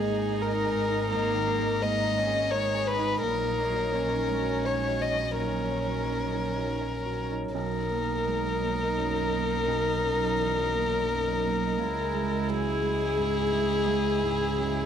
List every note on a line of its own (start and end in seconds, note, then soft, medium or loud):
0.00 3.23 G#1 medium
0.00 1.07 G#2 medium
0.00 1.14 D#3 medium
0.00 1.07 G#3 medium
0.00 1.14 G#3 soft
0.00 3.18 G#3 medium
0.00 1.14 A#3 medium
0.00 0.32 D#4 soft
0.00 1.81 D#4 medium
0.00 3.20 D#4 medium
0.00 0.44 G#4 medium
0.00 3.22 A#5 medium
0.18 0.55 G#4 soft
0.42 0.79 A#4 medium
0.42 1.11 A#4 medium
0.65 1.02 G#4 medium
0.88 1.25 D#4 soft
1.11 3.18 G#2 medium
1.11 1.45 A#3 medium
1.11 1.83 A#4 medium
1.35 1.72 D#3 soft
1.46 1.82 A#3 medium
1.57 1.95 G#3 soft
1.81 2.51 G#3 medium
1.81 2.19 A#3 medium
1.81 2.19 D#4 medium
1.81 2.52 D#5 medium
2.04 2.42 D#4 soft
2.18 2.55 C#4 medium
2.27 2.65 G#4 soft
2.51 3.24 G#3 medium
2.51 3.22 D#4 medium
2.51 2.89 A#4 medium
2.51 2.89 C#5 medium
2.74 3.12 G#4 medium
2.87 3.22 B4 medium
2.97 3.21 D#4 soft
3.21 7.54 A#1 medium
3.21 5.33 A#2 medium
3.21 7.55 F#3 medium
3.21 3.59 F#3 medium
3.21 7.52 D#4 medium
3.21 3.95 D#4 medium
3.21 4.67 A#4 medium
3.21 7.56 C#5 medium
3.44 3.83 A#3 soft
3.58 3.92 A#3 medium
3.68 4.07 F#3 soft
3.92 4.30 A#3 soft
3.92 4.31 C#4 soft
3.92 5.37 C#4 soft
4.16 4.55 D#4 soft
4.29 5.37 G#3 soft
4.41 4.79 F#4 soft
4.65 5.03 C#5 soft
4.88 5.27 F#4 soft
5.02 5.38 D#5 soft
5.12 5.52 D#4 soft
5.36 7.51 A#2 soft
5.36 7.31 F#3 soft
5.36 7.31 C#4 soft
5.36 7.32 A#4 soft
5.61 6.00 A#3 soft
5.85 6.25 F#3 soft
6.10 6.49 C#4 soft
6.33 6.73 D#4 soft
6.57 6.97 F#4 soft
6.81 7.21 C#5 soft
7.06 7.45 F#4 soft
7.31 7.55 D#4 soft
7.55 9.64 B1 medium
7.55 11.80 B1 medium
7.55 11.81 F#3 medium
7.55 11.75 F#3 medium
7.55 11.74 D#4 medium
7.55 11.80 D#4 medium
7.55 12.51 A#4 medium
7.55 11.75 A#4 medium
7.90 8.47 A#3 soft
8.26 8.62 G#3 soft
8.61 9.18 A#3 soft
8.98 9.54 F#2 soft
9.33 9.89 A#3 soft
9.68 11.74 B1 medium
10.04 10.60 F#2 soft
10.39 10.74 E2 soft
10.74 11.30 A#3 soft
11.08 11.64 F#2 soft
11.43 11.78 A#3 soft
11.78 13.83 C#2 medium
11.78 14.86 C#2 medium
11.78 14.86 G#3 medium
11.78 14.86 E4 medium
11.78 14.86 G#4 medium
12.13 12.69 G#3 medium
12.49 12.83 F#3 soft
12.49 14.86 G#4 medium
12.83 13.38 G#3 soft
13.17 13.73 G#2 medium
13.52 14.07 G#3 soft
13.86 14.86 C#2 medium
14.21 14.77 G#2 medium
14.56 14.86 F#2 soft